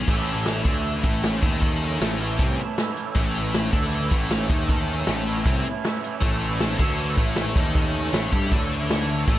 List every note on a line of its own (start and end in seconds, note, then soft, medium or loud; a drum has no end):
0.07 0.62 A1 medium
0.07 0.64 A2 loud
0.07 0.67 A2 medium
0.07 0.66 E3 medium
0.07 0.65 A3 loud
0.07 0.66 A3 medium
0.07 1.25 C#4 medium
0.07 0.65 E4 medium
0.07 kick loud
0.07 crash loud
0.27 closed hi-hat medium
0.46 snare loud
0.46 closed hi-hat medium
0.64 1.01 D2 medium
0.64 1.23 A2 medium
0.64 1.02 D3 loud
0.64 2.21 E3 medium
0.64 1.24 A3 medium
0.64 1.03 D4 loud
0.64 2.19 E4 medium
0.64 kick medium
0.64 closed hi-hat medium
0.74 closed hi-hat medium
0.84 closed hi-hat medium
1.03 1.40 A1 loud
1.03 1.41 A2 medium
1.03 1.42 A3 medium
1.03 kick loud
1.03 closed hi-hat medium
1.23 1.62 A2 medium
1.23 1.63 A3 medium
1.23 1.63 C#4 medium
1.23 snare loud
1.23 closed hi-hat medium
1.41 1.96 D#2 medium
1.41 1.99 D#3 medium
1.41 2.00 D#4 medium
1.41 kick loud
1.41 closed hi-hat medium
1.62 2.22 A2 medium
1.62 2.21 A3 medium
1.62 2.20 C#4 medium
1.62 kick loud
1.62 closed hi-hat medium
1.82 closed hi-hat medium
1.92 closed hi-hat medium
2.00 2.36 A1 medium
2.00 2.38 A2 medium
2.00 2.38 A3 medium
2.00 snare loud
2.00 closed hi-hat medium
2.20 2.77 A2 medium
2.20 2.78 E3 medium
2.20 2.78 A3 medium
2.20 2.79 C#4 medium
2.20 2.79 E4 medium
2.20 closed hi-hat medium
2.38 2.57 C2 medium
2.38 2.57 C3 medium
2.38 2.58 C4 medium
2.38 kick loud
2.38 closed hi-hat medium
2.59 closed hi-hat medium
2.78 3.15 A2 medium
2.78 3.16 E3 medium
2.78 3.17 A3 medium
2.78 3.17 C#4 medium
2.78 3.17 E4 medium
2.78 snare loud
2.78 closed hi-hat medium
2.97 closed hi-hat medium
3.15 3.69 A1 medium
3.15 3.71 A2 loud
3.15 3.76 A2 medium
3.15 3.75 E3 medium
3.15 3.72 A3 loud
3.15 3.75 A3 medium
3.15 4.32 C#4 medium
3.15 3.73 E4 medium
3.15 kick loud
3.15 closed hi-hat medium
3.35 closed hi-hat medium
3.54 snare loud
3.54 closed hi-hat medium
3.72 4.09 D2 medium
3.72 4.10 D3 loud
3.72 5.27 E3 medium
3.72 4.31 A3 medium
3.72 4.11 D4 loud
3.72 5.26 E4 medium
3.72 kick medium
3.72 closed hi-hat medium
3.76 4.30 A2 medium
3.83 snare soft
3.83 closed hi-hat medium
3.92 closed hi-hat medium
4.11 4.47 A1 loud
4.11 4.49 A2 medium
4.11 4.49 A3 medium
4.11 kick loud
4.11 closed hi-hat medium
4.30 4.69 A2 medium
4.30 4.70 A3 medium
4.30 4.71 C#4 medium
4.30 snare loud
4.30 closed hi-hat medium
4.49 5.03 D#2 medium
4.49 5.06 D#3 medium
4.49 5.07 D#4 medium
4.49 kick loud
4.49 closed hi-hat medium
4.69 5.27 A2 medium
4.69 5.27 A3 medium
4.69 5.26 C#4 medium
4.69 kick loud
4.69 closed hi-hat medium
4.87 closed hi-hat medium
4.98 closed hi-hat medium
5.07 5.43 A1 medium
5.07 5.45 A2 medium
5.07 5.45 A3 medium
5.07 snare loud
5.07 closed hi-hat medium
5.26 5.83 A2 medium
5.26 5.84 E3 medium
5.26 5.85 A3 medium
5.26 5.85 C#4 medium
5.26 5.85 E4 medium
5.26 closed hi-hat medium
5.45 5.64 C2 medium
5.45 5.64 C3 medium
5.45 5.65 C4 medium
5.45 kick loud
5.45 closed hi-hat medium
5.65 closed hi-hat medium
5.84 6.21 A2 medium
5.84 6.22 E3 medium
5.84 6.23 A3 medium
5.84 6.23 C#4 medium
5.84 6.24 E4 medium
5.84 snare loud
5.84 closed hi-hat medium
6.04 closed hi-hat medium
6.21 6.76 A1 loud
6.21 6.79 A2 loud
6.21 6.80 A2 medium
6.21 6.80 E3 medium
6.21 6.80 A3 loud
6.21 6.79 A3 medium
6.21 7.38 C#4 medium
6.21 6.78 E4 medium
6.21 9.39 A4 medium
6.21 9.39 C#5 medium
6.21 9.24 C#6 medium
6.21 kick loud
6.21 closed hi-hat medium
6.41 closed hi-hat medium
6.60 snare loud
6.60 closed hi-hat medium
6.79 7.15 D2 medium
6.79 7.36 A2 medium
6.79 7.16 D3 loud
6.79 8.34 E3 medium
6.79 7.38 A3 medium
6.79 7.17 D4 loud
6.79 8.32 E4 medium
6.79 kick medium
6.79 closed hi-hat medium
6.89 closed hi-hat medium
6.98 closed hi-hat medium
7.17 7.53 A1 loud
7.17 7.55 A2 medium
7.17 7.56 A3 medium
7.17 kick loud
7.17 closed hi-hat medium
7.36 7.74 A2 medium
7.36 7.76 A3 medium
7.36 7.76 C#4 medium
7.36 snare loud
7.36 closed hi-hat medium
7.56 8.09 D#2 medium
7.56 8.12 D#3 medium
7.56 8.13 D#4 medium
7.56 kick loud
7.56 closed hi-hat medium
7.75 8.34 A2 medium
7.75 8.33 A3 medium
7.75 9.28 C#4 medium
7.75 kick loud
7.75 closed hi-hat medium
7.95 closed hi-hat medium
8.04 closed hi-hat medium
8.13 8.31 A1 medium
8.13 8.32 A2 medium
8.13 8.32 A3 loud
8.13 snare loud
8.13 closed hi-hat medium
8.32 8.51 G2 medium
8.32 8.89 A2 medium
8.32 8.90 E3 medium
8.32 8.51 G3 loud
8.32 8.90 A3 medium
8.32 8.92 E4 medium
8.32 8.51 G4 loud
8.32 kick loud
8.32 closed hi-hat medium
8.43 snare soft
8.51 9.24 D2 medium
8.51 9.27 D3 medium
8.51 9.27 D4 medium
8.51 kick loud
8.51 closed hi-hat medium
8.72 closed hi-hat medium
8.90 9.26 A2 medium
8.90 9.27 E3 medium
8.90 9.28 A3 medium
8.90 9.29 E4 medium
8.90 snare loud
8.90 closed hi-hat medium
9.09 closed hi-hat medium
9.27 9.39 A1 loud
9.27 9.39 A2 medium
9.27 9.39 A2 loud
9.27 9.39 E3 medium
9.27 9.39 A3 loud
9.27 9.39 C#4 medium
9.27 9.39 E4 loud
9.27 9.39 B5 medium
9.27 kick loud
9.27 closed hi-hat medium